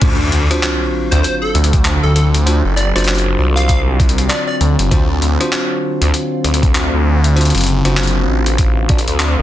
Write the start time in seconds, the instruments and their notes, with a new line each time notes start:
0.01 detuned saw bass D2, ambient pad D3 F#3 C4 F5, tine electric piano D4 F4 F#4 C5, kick, closed hi-hat, crash, sub drop
0.32 detuned saw bass D2, closed hi-hat
0.51 tine electric piano D4 F4 F#4 C5, cross-stick, closed hi-hat
0.63 clap, closed hi-hat
1.11 detuned saw bass D2, digital synth lead C5, closed hi-hat
1.23 digital synth lead C5, closed hi-hat
1.42 digital synth lead A4
1.55 detuned saw bass D2, closed hi-hat
1.64 closed hi-hat
1.73 kick, closed hi-hat
1.85 clap, closed hi-hat
2.03 detuned saw bass D2, digital synth lead A4
2.16 digital synth lead A4, closed hi-hat
2.34 closed hi-hat
2.46 tine electric piano D4 F4 F#4 C5, closed hi-hat
2.65 detuned saw bass F#1
2.76 digital synth lead D5, closed hi-hat
2.95 detuned saw bass F#1, tine electric piano D4 F4 F#4 C5, digital synth lead D5, cross-stick, closed hi-hat
2.98 closed hi-hat
3.04 closed hi-hat
3.08 clap, closed hi-hat
3.15 closed hi-hat
3.18 closed hi-hat
3.39 detuned saw bass C2
3.56 digital synth lead F5, closed hi-hat
3.68 digital synth lead F5, kick, closed hi-hat
4.00 kick, closed hi-hat
4.09 closed hi-hat
4.18 closed hi-hat
4.29 digital synth lead D5, clap, closed hi-hat
4.47 digital synth lead D5
4.61 detuned saw bass D2, closed hi-hat
4.79 detuned saw bass F#1, closed hi-hat
4.91 detuned saw bass D2, tine electric piano D4 F4 F#4 C5, kick, closed hi-hat
5.22 detuned saw bass D2, closed hi-hat
5.40 tine electric piano D4 F4 F#4 C5, cross-stick, closed hi-hat
5.52 clap, closed hi-hat
6.01 detuned saw bass D2, closed hi-hat
6.14 closed hi-hat
6.44 detuned saw bass D2, closed hi-hat
6.54 closed hi-hat
6.63 kick, closed hi-hat
6.75 clap, closed hi-hat
6.93 detuned saw bass D2
7.24 closed hi-hat
7.36 tine electric piano D4 F4 F#4 C5, closed hi-hat
7.41 closed hi-hat
7.45 closed hi-hat
7.50 closed hi-hat
7.55 detuned saw bass F#1, closed hi-hat
7.58 closed hi-hat
7.61 closed hi-hat
7.64 closed hi-hat
7.66 closed hi-hat
7.85 detuned saw bass F#1, tine electric piano D4 F4 F#4 C5, cross-stick, closed hi-hat
7.97 clap, closed hi-hat
8.03 closed hi-hat
8.07 closed hi-hat
8.28 detuned saw bass A1
8.46 closed hi-hat
8.58 kick, closed hi-hat
8.89 detuned saw bass A1, tine electric piano D4 F4 F#4 D5, kick, closed hi-hat
8.98 closed hi-hat
9.08 detuned saw bass D2, closed hi-hat
9.20 clap, closed hi-hat
9.39 detuned saw bass F#1